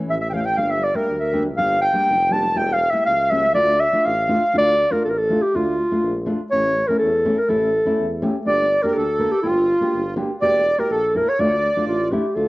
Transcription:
Already playing: nylon-string guitar E3 A3 C#4
0.08 tuba A1, accordion E5, clarinet E5
0.20 accordion E5, clarinet E5
0.30 nylon-string guitar E3 A3 C#4, accordion F5, clarinet F5 G5
0.36 accordion F5 G5
0.46 clarinet G5, accordion G5
0.56 nylon-string guitar G3 A#3 D4, accordion F5, clarinet F5
0.60 tuba G1
0.70 accordion E5, clarinet E5
0.82 accordion D5, clarinet D5
0.94 nylon-string guitar G3 A#3 D4, accordion A#4, clarinet A#4
1.10 tuba D2
1.20 accordion E5
1.33 nylon-string guitar G3 A#3 D4
1.57 tuba G1, nylon-string guitar G3 A#3 D4, clarinet F5, accordion F5
1.82 clarinet G5, accordion G5
1.93 nylon-string guitar G3 A#3 D4
2.09 tuba F1
2.30 nylon-string guitar G3 A#3 D4, clarinet A5, accordion A5
2.55 tuba E1, nylon-string guitar G3 A#3 E4, clarinet G5, accordion G5
2.73 clarinet F5, accordion F5
2.90 nylon-string guitar G3 A#3 E4, accordion E5, clarinet E5
3.06 tuba C#2, accordion F5, clarinet F5
3.30 nylon-string guitar G3 A#3 C#4, clarinet E5, accordion E5
3.53 tuba D2, nylon-string guitar A3 D4 F4, clarinet D5
3.58 accordion D5
3.80 clarinet E5, accordion E5
3.92 nylon-string guitar A3 D4 F4
4.05 tuba A1, clarinet F5, accordion F5
4.28 nylon-string guitar A3 D4 F4
4.53 tuba D2, nylon-string guitar A3 D4 F4
4.58 clarinet D5
4.91 nylon-string guitar A3 D4 F4, clarinet A#4
5.05 tuba A1, clarinet A4
5.10 clarinet A#4
5.19 clarinet A4
5.30 nylon-string guitar A3 D4 F4
5.42 clarinet G4
5.54 tuba D2, nylon-string guitar A3 D4 F4, clarinet F4
5.91 nylon-string guitar A3 D4 F4
6.03 tuba A#1
6.26 nylon-string guitar A3 D4 F4
6.51 tuba A1, nylon-string guitar A3 C#4 E4, clarinet C#5
6.88 nylon-string guitar A3 C#4 E4, clarinet A#4
6.99 tuba E2, clarinet A4
7.25 nylon-string guitar A3 C#4 E4
7.39 clarinet A#4
7.48 tuba A1, nylon-string guitar A3 C#4 E4, clarinet A4
7.85 nylon-string guitar A3 C#4 E4
7.98 tuba E2
8.22 nylon-string guitar A3 C#4 G4
8.46 tuba G1, nylon-string guitar A#3 D4 G4, clarinet D5, accordion D5
8.82 nylon-string guitar A#3 D4 G4, clarinet A#4, accordion A#4
8.94 tuba D2, clarinet A4, accordion A4
9.19 nylon-string guitar A#3 D4 A#4
9.31 clarinet G4
9.43 tuba G1, nylon-string guitar A#3 D4 G4, clarinet F4, accordion F4
9.81 nylon-string guitar A#3 D4 G4
9.94 tuba G1
10.16 nylon-string guitar A#3 D4 G4
10.41 tuba E1, nylon-string guitar A#3 E4 G4, accordion D5, clarinet D5
10.78 nylon-string guitar A#3 E4 G4, accordion A#4, clarinet A#4
10.90 tuba A#1, accordion A4, clarinet A4
11.14 nylon-string guitar A#3 E4 A4, accordion A#4, clarinet A#4
11.27 accordion C#5, clarinet C#5
11.39 tuba D2, nylon-string guitar A3 D4 F4, clarinet D5, accordion D5
11.47 accordion C#5
11.53 accordion D5
11.76 nylon-string guitar A3 D4 F4
11.87 tuba A1, clarinet F4
12.12 nylon-string guitar A3 D4 E4, clarinet G4
12.35 tuba D2, nylon-string guitar A3 D4 F4, clarinet A4

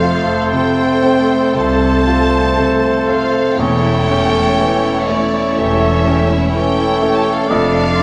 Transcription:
Already playing: double bass section F1, cello section F2, timpani F2, grand piano F2, bassoon A3, viola section A3 A4, french horn section A3 C4, clarinet A4, oboe C5, violin section C5 F5
0.03 grand piano F4, violin section F4
0.29 violin section A4
0.53 grand piano C3, violin section F4 G5
0.79 violin section C4
1.03 violin section A3, grand piano C4
1.31 violin section C4
1.54 double bass section C2, cello section C2, grand piano C3, bassoon A3, violin section F4 A5, clarinet A4, oboe C5
1.84 violin section A4
2.07 grand piano F4, violin section F4
2.33 violin section C4
2.59 grand piano C3, violin section A3
2.84 violin section C4
3.08 grand piano C4, violin section F4 F5
3.34 violin section A4
3.58 double bass section E1, grand piano E2, cello section E2, viola section A3 E4, bassoon A3, french horn section A3 C#4, violin section C#4 C#5 G5, clarinet A4, oboe C#5
3.82 violin section E4
4.08 grand piano C#4, violin section G4
4.32 violin section A4
4.58 grand piano E3, violin section G4
4.83 violin section E4
5.08 grand piano A3, violin section C#4 D5
5.34 violin section E4
5.57 double bass section E1, cello section E2, grand piano E3, bassoon A3, violin section G4 E5, clarinet A4, oboe C#5
5.83 violin section A4
6.06 grand piano C#4, violin section G4
6.30 violin section E4
6.53 grand piano E3, bassoon A3, violin section C#4 G5, clarinet A4, oboe C#5
6.78 violin section E4
7.01 grand piano A3, violin section G4
7.16 violin section A5
7.23 violin section A4 G5
7.33 violin section F5
7.41 violin section G5
7.49 double bass section F1, cello section F2, grand piano F2, bassoon A3, viola section A3 D4, violin section A3 D5 F5, french horn section A3 D4, clarinet A4, oboe D5
7.73 violin section D4
7.96 grand piano D4, violin section F4

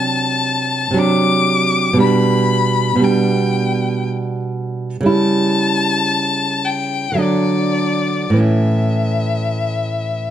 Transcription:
Already playing: nylon-string guitar C3 F#3 D4, violin A5
0.91 nylon-string guitar C3 F#3
0.97 nylon-string guitar D4, violin D6
1.93 nylon-string guitar B2 G3
2.00 nylon-string guitar D4, violin B5
2.96 nylon-string guitar B2 G3
3.02 nylon-string guitar D4, violin G5
5.01 nylon-string guitar C#3 G3
5.06 nylon-string guitar E4, violin A5
6.65 violin G5
7.12 nylon-string guitar D3 F#3
7.18 nylon-string guitar D4, violin D5
8.30 nylon-string guitar A2 E3
8.37 nylon-string guitar C#4, violin E5

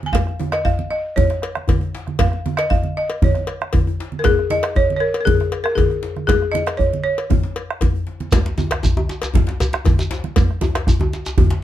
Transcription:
0.03 balafon G#5, high conga
0.13 balafon F5, bombo low, cowbell, djembe bass, low conga
0.27 bombo rim, high conga
0.40 djembe tone, high conga
0.52 balafon D#5, bombo rim, cowbell, djembe slap
0.65 balafon F5, bombo rim, bombo low, high conga, djembe bass
0.79 high conga
0.91 balafon D#5
1.16 balafon C#5, bombo low, djembe tone, high conga, djembe bass, low conga
1.30 bombo rim, djembe slap
1.42 bombo rim, cowbell
1.55 bombo rim, djembe slap, high conga
1.68 bombo low, cowbell, high conga, djembe bass
1.81 djembe slap, djembe tone
1.95 djembe slap
2.07 bombo rim, djembe slap, high conga
2.19 balafon F5, bombo low, cowbell, low conga, djembe bass
2.32 bombo rim, high conga
2.46 djembe tone, high conga
2.57 balafon D#5, bombo rim, cowbell, djembe slap
2.70 balafon F5, bombo rim, bombo low, high conga, djembe bass
2.83 high conga
2.97 balafon D#5
3.10 cowbell
3.22 balafon C#5, bombo low, djembe tone, high conga, djembe bass, low conga
3.35 bombo rim, djembe slap
3.47 bombo rim, cowbell
3.61 bombo rim, djembe slap, high conga
3.73 bombo low, cowbell, high conga, djembe bass
3.87 djembe slap, djembe tone
4.00 djembe slap
4.12 djembe slap, high conga
4.19 balafon A#4
4.24 balafon G#4, bombo low, cowbell, low conga, djembe bass
4.38 bombo rim, high conga
4.50 balafon D#5, high conga, djembe tone
4.63 bombo rim, cowbell, djembe slap
4.76 balafon C#5, bombo rim, bombo low, high conga, djembe bass
4.90 high conga
4.97 balafon A#4 C#5
5.14 cowbell
5.21 balafon A#4
5.25 balafon G#4, bombo low, djembe tone, high conga, djembe bass, low conga
5.40 bombo rim, djembe slap
5.52 bombo rim, cowbell
5.64 balafon A#4, bombo rim, djembe slap, high conga
5.75 balafon G#4, bombo low, cowbell, high conga, djembe bass
5.90 djembe slap, djembe tone
6.03 djembe slap
6.16 bombo rim, djembe slap, high conga
6.27 balafon G#4, bombo rim, bombo low, cowbell, djembe bass, low conga
6.41 bombo rim, djembe slap
6.52 balafon D#5, bombo rim, djembe tone, high conga
6.67 bombo rim, cowbell, djembe slap
6.77 balafon C#5, bombo low, djembe bass
6.92 djembe slap, high conga
7.04 balafon C#5
7.18 bombo rim, cowbell
7.30 bombo rim, bombo low, djembe tone, high conga, djembe bass, low conga
7.43 djembe slap, high conga
7.55 cowbell, djembe slap
7.70 bombo rim
7.81 bombo low, cowbell, high conga, djembe bass
7.94 djembe bass
8.07 djembe slap, high conga
8.20 djembe slap, high conga
8.32 bombo low, cowbell, djembe tone, djembe bass, low conga, shekere
8.45 bombo rim, djembe slap, high conga
8.58 djembe slap, high conga, djembe tone, shekere
8.71 bombo rim, cowbell, djembe slap
8.83 bombo rim, bombo low, djembe slap, high conga, djembe bass, shekere
8.97 djembe tone, high conga
9.09 djembe slap, shekere
9.22 cowbell, djembe slap, shekere
9.34 bombo low, djembe slap, djembe tone, high conga, djembe bass, low conga
9.47 bombo rim, djembe slap
9.49 djembe slap
9.60 bombo rim, cowbell, djembe tone, shekere
9.73 bombo rim, djembe slap, high conga
9.85 bombo low, cowbell, djembe slap, high conga, djembe bass, shekere
9.98 djembe slap, djembe tone, shekere
10.11 djembe slap, shekere
10.24 bombo rim, djembe slap, high conga
10.36 bombo low, cowbell, low conga, djembe bass, shekere
10.49 bombo rim, high conga
10.61 high conga, djembe tone, shekere
10.75 bombo rim, cowbell, djembe slap
10.87 bombo rim, bombo low, djembe slap, djembe bass, shekere
11.00 high conga, djembe tone
11.13 djembe slap, shekere
11.26 djembe slap, shekere
11.38 bombo low, high conga, djembe tone, low conga, djembe bass
11.50 bombo rim, djembe slap

